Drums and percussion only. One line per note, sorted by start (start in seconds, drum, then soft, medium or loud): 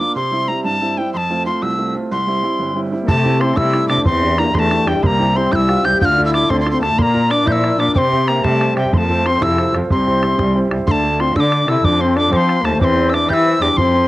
3.08 bodhran medium
3.25 bodhran soft
3.41 bodhran medium
3.57 bodhran medium
3.74 bodhran medium
3.90 bodhran medium
3.98 bodhran soft
4.06 bodhran medium
4.22 bodhran soft
4.38 bodhran medium
4.55 bodhran medium
4.71 bodhran medium
4.88 bodhran medium
4.96 bodhran soft
5.04 bodhran medium
5.20 bodhran soft
5.53 bodhran medium
5.69 bodhran medium
5.85 bodhran medium
5.94 bodhran soft
6.01 bodhran medium
6.18 bodhran soft
6.34 bodhran medium
6.50 bodhran medium
6.66 bodhran medium
6.83 bodhran medium
6.91 bodhran soft
6.99 bodhran medium
7.15 bodhran soft
7.31 bodhran medium
7.47 bodhran medium
7.64 bodhran medium
7.80 bodhran medium
7.88 bodhran soft
7.96 bodhran medium
8.12 bodhran soft
8.28 bodhran medium
8.44 bodhran medium
8.61 bodhran medium
8.77 bodhran medium
8.85 bodhran soft
8.93 bodhran medium
9.09 bodhran soft
9.26 bodhran medium
9.42 bodhran medium
9.58 bodhran medium
9.74 bodhran medium
9.82 bodhran soft
9.90 bodhran medium
10.06 bodhran soft
10.23 bodhran medium
10.39 bodhran medium
10.71 bodhran medium
10.80 bodhran soft
10.88 bodhran medium
11.20 bodhran medium
11.36 bodhran medium
11.52 bodhran medium
11.68 bodhran medium
11.84 bodhran medium
12.17 bodhran medium
12.33 bodhran medium
12.49 bodhran medium
12.65 bodhran medium
12.81 bodhran medium
13.14 bodhran medium
13.30 bodhran medium
13.62 bodhran medium
13.78 bodhran medium